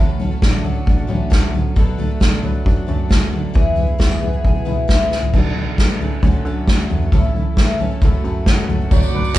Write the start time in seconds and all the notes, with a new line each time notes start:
Already playing: A1 A2 F#4
0.09 F#3 A3 C#4 A4
0.19 F#3 A3 C#4 A4, floor tom
0.31 F#3 A3 C#4 A4
0.42 A1 A2 D3 F#3 A3 C#4 D4 A4, kick, snare, floor tom
0.64 F#3 A3 C#4 F#4 A4, floor tom
0.75 F#3 A3 C#4 A4
0.86 A1 D4, kick, floor tom
0.98 F#3 A3 C#4 A4
1.07 A1 A2 F#3 A3 C#4 A4, floor tom
1.30 G#2 A2 D3 F#3 A3 C#4 A4, kick, snare, floor tom
1.53 A2 F#3 A3 C#4 A4, floor tom
1.76 B1 B2 F#3 A3 D4 A4, kick, floor tom
1.98 F#3 A3 D4 A4, floor tom
2.10 A3 D4 A4
2.20 B1 B2 F#3 A3 D4 A4, kick, snare, floor tom
2.43 F#3 A3 D4 A4 B4, floor tom
2.54 A3 D4 A4
2.66 F#2 D4, kick, floor tom
2.76 A3 D4 A4
2.87 F#2 F#3 A3 D4 A4, floor tom
3.09 B2 C#3 F#3 A3 D4 A4, kick, snare, floor tom
3.31 D3 F#3 A3 D4 A4, floor tom
3.54 E2 E3 B3 E4 G#4, kick, floor tom
3.76 E3 B3 E4 G#4, floor tom
3.87 B3 E4 G#4
3.98 E2 E3 B3 E4 F#4 G#4, kick, snare, floor tom
4.11 G#4
4.21 E3 B3 E4 G#4, floor tom
4.33 B3 E4 G#4
4.45 B1 G#4, kick, floor tom
4.55 B3 E4 G#4
4.65 B1 B2 E3 B3 E4 G#4, floor tom
4.88 D3 E3 B3 E4 G#4, kick, snare, floor tom
5.11 C#3 E3 B3 E4 G#4, snare
5.23 floor tom
5.33 B1 B2 F#3 A3 D4 A4, kick, floor tom, crash
5.45 A3 D4 A4
5.56 D4, floor tom
5.78 B2 F#3 A3 D4 A4, kick, snare
6.00 C#3 F#3 A3 D4 A4, floor tom
6.12 A3 D4 A4
6.22 D2 D3 F#3 A3 C#4 D4 F#4 A4, kick, floor tom
6.34 A3 C#4 A4
6.45 D3 F#3 A3 C#4 D4 A4
6.67 D2 C#3 D3 F#3 A3 C#4 A4, kick, snare
6.90 E2 B2 F#3 A3 C#4 A4, floor tom
7.02 A3 C#4 A4
7.12 A1 A2 E3 A3 C#4 E4 A4, kick, floor tom
7.23 A3 C#4 E4 A4
7.34 E4, floor tom
7.57 A2 E3 A3 C#4 E4 A4, kick, snare
7.79 A3 C#4 E4 A4, floor tom
7.91 A3 C#4 E4 A4
8.02 F#1 F#2 C#3 E3 A3 C#4 E4 F#4 A4, kick, floor tom
8.13 E3 A3 C#4 F#4
8.24 F#2 E3 A3 C#4 E4 F#4
8.46 F#1 F#2 C#3 E3 F#3 A3 C#4 F#4, kick, snare
8.69 F#1 E3 A3 C#4 F#4, floor tom
8.80 E3 A3 C#4 F#4
8.91 F#1 F#2 C#3 F#3 A3 D4 F#4 C#5 D5 F#5 D6, kick, floor tom, tambourine
9.02 F#3 A3 D4 F#4, tambourine
9.13 A3 D4 F#4 B4, floor tom
9.24 tambourine